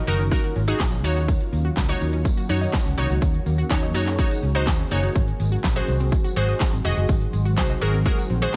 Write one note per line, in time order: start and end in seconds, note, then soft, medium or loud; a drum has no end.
0.00 8.56 D#3 medium
0.00 8.56 F#3 medium
0.00 5.12 A#3 medium
0.00 5.12 C#4 medium
0.00 1.03 F4 medium
0.07 0.31 F#1 medium
0.07 0.16 D#3 medium
0.07 0.22 D#4 loud
0.07 0.22 F#4 medium
0.07 0.22 A#4 loud
0.07 open hi-hat medium
0.07 tambourine medium
0.07 shaker medium
0.19 0.28 C#4 medium
0.19 closed hi-hat medium
0.19 tambourine soft
0.19 shaker medium
0.31 0.40 A#3 medium
0.31 0.54 D#4 medium
0.31 0.54 F#4 medium
0.31 0.54 A#4 loud
0.31 kick loud
0.31 closed hi-hat medium
0.31 tambourine soft
0.31 shaker medium
0.44 0.52 F#4 loud
0.44 closed hi-hat medium
0.44 tambourine medium
0.44 shaker medium
0.56 0.72 G#1 loud
0.56 0.64 C#4 medium
0.56 open hi-hat medium
0.56 shaker soft
0.68 0.90 D#4 loud
0.68 0.90 F#4 medium
0.68 0.90 G#4 loud
0.68 0.77 D#5 medium
0.68 closed hi-hat soft
0.68 tambourine soft
0.68 shaker medium
0.80 1.04 A#1 loud
0.80 0.89 D#3 medium
0.80 kick loud
0.80 snare loud
0.80 clap loud
0.80 closed hi-hat medium
0.80 tambourine medium
0.80 shaker medium
0.92 1.01 C#4 medium
0.92 closed hi-hat medium
0.92 shaker medium
1.04 1.36 D#2 loud
1.04 1.13 A#3 medium
1.04 1.72 D#4 medium
1.04 1.72 F#4 medium
1.04 2.96 F#4 loud
1.04 1.72 C#5 loud
1.04 open hi-hat medium
1.04 tambourine medium
1.04 shaker medium
1.16 1.25 F#4 loud
1.16 closed hi-hat medium
1.16 tambourine soft
1.16 shaker medium
1.28 1.37 D#3 medium
1.28 kick loud
1.28 closed hi-hat medium
1.28 tambourine soft
1.28 shaker medium
1.41 closed hi-hat medium
1.41 shaker medium
1.53 1.68 D#2 loud
1.53 1.61 A#3 medium
1.53 open hi-hat medium
1.53 tambourine soft
1.53 shaker medium
1.65 1.73 F#4 loud
1.65 closed hi-hat soft
1.65 shaker medium
1.77 1.93 C#2 medium
1.77 1.85 C#4 medium
1.77 kick loud
1.77 snare medium
1.77 clap loud
1.77 closed hi-hat medium
1.77 tambourine medium
1.77 shaker medium
1.89 2.26 D#4 medium
1.89 2.26 F#4 medium
1.89 2.26 C#5 loud
1.89 1.97 D#5 medium
1.89 closed hi-hat medium
1.89 shaker medium
2.01 2.25 D#2 medium
2.01 2.10 D#3 medium
2.01 open hi-hat medium
2.01 tambourine medium
2.01 shaker medium
2.13 2.22 C#4 medium
2.13 closed hi-hat medium
2.13 tambourine soft
2.13 shaker medium
2.25 2.34 A#3 medium
2.25 kick loud
2.25 closed hi-hat medium
2.25 tambourine soft
2.25 shaker medium
2.37 2.46 F#4 loud
2.37 closed hi-hat medium
2.37 tambourine medium
2.37 shaker medium
2.49 2.65 F#2 loud
2.49 2.58 C#4 medium
2.49 2.79 D#4 medium
2.49 2.79 F#4 medium
2.49 2.79 C#5 loud
2.49 open hi-hat medium
2.49 shaker soft
2.61 2.70 D#5 medium
2.61 closed hi-hat medium
2.61 tambourine soft
2.61 shaker medium
2.73 2.82 D#3 medium
2.73 kick loud
2.73 snare loud
2.73 clap loud
2.73 closed hi-hat medium
2.73 tambourine medium
2.73 shaker medium
2.86 2.94 C#2 loud
2.86 2.94 C#4 medium
2.86 closed hi-hat medium
2.86 shaker medium
2.98 3.06 C2 loud
2.98 3.06 A#3 medium
2.98 3.42 D#4 loud
2.98 3.42 F#4 medium
2.98 5.13 G#4 medium
2.98 3.43 C#5 loud
2.98 open hi-hat medium
2.98 tambourine medium
2.98 shaker soft
3.10 3.18 C#2 medium
3.10 3.18 F#4 loud
3.10 closed hi-hat medium
3.10 tambourine soft
3.10 shaker medium
3.22 3.38 D#2 loud
3.22 3.31 D#3 medium
3.22 kick loud
3.22 closed hi-hat medium
3.22 tambourine soft
3.22 shaker medium
3.34 closed hi-hat medium
3.34 shaker medium
3.46 3.62 D#2 loud
3.46 3.55 A#3 medium
3.46 open hi-hat medium
3.46 tambourine soft
3.46 shaker medium
3.58 3.67 F#4 loud
3.58 closed hi-hat soft
3.58 tambourine soft
3.58 shaker medium
3.70 3.95 D#2 medium
3.70 3.79 C#4 medium
3.70 3.85 D#4 medium
3.70 3.85 F#4 medium
3.70 3.85 C#5 loud
3.70 kick loud
3.70 snare medium
3.70 clap loud
3.70 closed hi-hat medium
3.70 tambourine medium
3.70 shaker medium
3.82 3.91 D#5 medium
3.82 closed hi-hat medium
3.82 shaker medium
3.94 4.18 F#2 medium
3.94 4.03 D#3 medium
3.94 4.09 D#4 loud
3.94 4.09 F#4 medium
3.94 4.10 C#5 loud
3.94 open hi-hat medium
3.94 tambourine medium
3.94 shaker medium
4.06 4.15 C#4 medium
4.06 clap medium
4.06 closed hi-hat medium
4.06 tambourine soft
4.06 shaker medium
4.18 4.27 A#3 medium
4.18 4.41 D#4 medium
4.18 4.41 F#4 medium
4.18 4.41 C#5 loud
4.18 kick loud
4.18 closed hi-hat medium
4.18 tambourine soft
4.18 shaker medium
4.31 4.39 F#4 loud
4.31 closed hi-hat medium
4.31 tambourine medium
4.31 shaker medium
4.43 4.67 C#2 loud
4.43 4.52 C#4 medium
4.43 open hi-hat medium
4.43 shaker soft
4.55 4.77 D#4 loud
4.55 4.77 F#4 medium
4.55 4.77 C5 loud
4.55 4.64 D#5 medium
4.55 closed hi-hat soft
4.55 tambourine soft
4.55 shaker medium
4.67 4.83 D#2 loud
4.67 4.76 D#3 medium
4.67 kick loud
4.67 snare loud
4.67 clap loud
4.67 closed hi-hat medium
4.67 tambourine medium
4.67 shaker medium
4.79 4.88 C#4 medium
4.79 closed hi-hat medium
4.79 shaker medium
4.91 5.07 F#1 medium
4.91 5.00 A#3 medium
4.91 5.15 D#4 loud
4.91 5.16 F#4 medium
4.91 5.16 C#5 loud
4.91 open hi-hat medium
4.91 tambourine medium
4.91 shaker medium
5.03 5.12 F#4 loud
5.03 closed hi-hat medium
5.03 shaker medium
5.16 5.31 G#1 loud
5.16 5.24 D#3 medium
5.16 8.56 G#3 medium
5.16 8.56 F#4 medium
5.16 8.56 C5 medium
5.16 kick loud
5.16 closed hi-hat medium
5.16 tambourine soft
5.16 shaker medium
5.28 closed hi-hat medium
5.28 shaker medium
5.40 5.56 G#1 loud
5.40 5.48 G#3 medium
5.40 open hi-hat medium
5.40 tambourine soft
5.40 shaker medium
5.52 5.60 F#4 loud
5.52 closed hi-hat soft
5.52 tambourine soft
5.52 shaker medium
5.64 5.80 A#1 medium
5.64 5.73 C4 medium
5.64 kick loud
5.64 snare medium
5.64 clap loud
5.64 closed hi-hat medium
5.64 tambourine medium
5.64 shaker medium
5.76 6.13 F#4 medium
5.76 6.13 G#4 medium
5.76 6.13 C5 loud
5.76 5.85 D#5 medium
5.76 closed hi-hat medium
5.76 shaker medium
5.88 6.12 C2 medium
5.88 5.97 D#3 medium
5.88 open hi-hat medium
5.88 tambourine medium
5.88 shaker medium
6.00 6.09 C4 medium
6.00 closed hi-hat medium
6.00 tambourine soft
6.00 shaker medium
6.12 6.21 G#3 medium
6.12 kick loud
6.12 closed hi-hat medium
6.12 tambourine soft
6.12 shaker medium
6.24 6.33 F#4 loud
6.24 closed hi-hat medium
6.24 tambourine medium
6.24 shaker medium
6.36 6.52 G#1 medium
6.36 6.45 C4 medium
6.36 6.66 F#4 medium
6.36 6.66 G#4 medium
6.36 6.66 C5 loud
6.36 open hi-hat medium
6.36 shaker soft
6.48 6.57 D#5 medium
6.48 closed hi-hat medium
6.48 tambourine soft
6.48 shaker medium
6.60 6.69 D#3 medium
6.60 kick loud
6.60 snare loud
6.60 clap loud
6.60 closed hi-hat medium
6.60 tambourine medium
6.60 shaker medium
6.73 6.81 G#1 medium
6.73 6.81 C4 medium
6.73 closed hi-hat medium
6.73 shaker medium
6.85 6.93 F1 medium
6.85 6.93 G#3 medium
6.85 7.29 F#4 medium
6.85 7.30 G#4 medium
6.85 7.30 D#5 loud
6.85 open hi-hat medium
6.85 tambourine medium
6.85 shaker medium
6.97 7.05 F#1 medium
6.97 7.05 F#4 loud
6.97 closed hi-hat medium
6.97 shaker medium
7.09 7.25 G#1 loud
7.09 7.18 D#3 medium
7.09 kick loud
7.09 closed hi-hat medium
7.09 tambourine soft
7.09 shaker medium
7.21 closed hi-hat medium
7.21 shaker medium
7.33 7.59 G#1 loud
7.33 7.42 G#3 medium
7.33 open hi-hat medium
7.33 tambourine soft
7.33 shaker medium
7.45 7.54 F#4 loud
7.45 closed hi-hat soft
7.45 tambourine soft
7.45 shaker medium
7.57 7.73 C2 loud
7.57 7.66 C4 medium
7.57 7.72 F#4 medium
7.57 7.72 G#4 medium
7.57 7.72 C5 loud
7.57 kick loud
7.57 snare medium
7.57 clap loud
7.57 closed hi-hat medium
7.57 tambourine medium
7.57 shaker medium
7.69 7.78 D#5 medium
7.69 closed hi-hat medium
7.69 shaker medium
7.81 8.05 G#1 loud
7.81 7.90 D#3 medium
7.81 7.96 F#4 loud
7.81 7.97 G#4 medium
7.81 7.97 A#4 loud
7.81 open hi-hat medium
7.81 tambourine medium
7.81 shaker medium
7.94 8.02 C4 medium
7.94 closed hi-hat medium
7.94 tambourine soft
7.94 shaker medium
8.06 8.14 G#3 medium
8.06 8.28 F#4 medium
8.06 8.28 G#4 medium
8.06 8.28 A#4 loud
8.06 kick loud
8.06 closed hi-hat medium
8.06 tambourine soft
8.06 shaker medium
8.18 8.27 F#4 loud
8.18 closed hi-hat medium
8.18 tambourine medium
8.18 shaker medium
8.30 8.46 A#1 loud
8.30 8.39 C4 medium
8.30 open hi-hat medium
8.30 shaker soft
8.42 8.56 F#4 loud
8.42 8.56 G#4 medium
8.42 8.56 C5 loud
8.42 8.51 D#5 medium
8.42 closed hi-hat medium
8.42 shaker medium